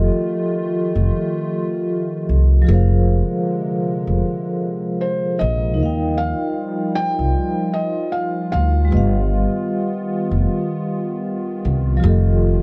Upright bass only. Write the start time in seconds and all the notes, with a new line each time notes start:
0.95 F1
2.29 C2
2.68 F1
4.07 F1
5.41 A#1
5.80 D#2
7.19 C2
8.53 D2
8.92 G1
10.31 F1
11.65 C2
12.04 F1